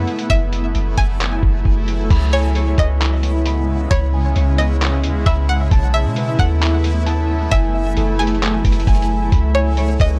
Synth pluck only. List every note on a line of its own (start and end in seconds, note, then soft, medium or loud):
0.00 0.26 F#5 medium
0.30 0.94 E5 loud
0.97 2.06 G#5 medium
2.33 2.75 C#5 medium
2.79 3.87 D#5 medium
3.91 4.54 C#5 loud
4.58 5.22 D#5 medium
5.26 5.48 E5 medium
5.49 5.70 F#5 medium
5.94 6.36 E5 medium
6.39 7.48 F#5 medium
7.51 8.15 E5 loud
8.19 9.28 G#5 medium
9.55 9.97 C#5 medium
10.01 10.19 D#5 medium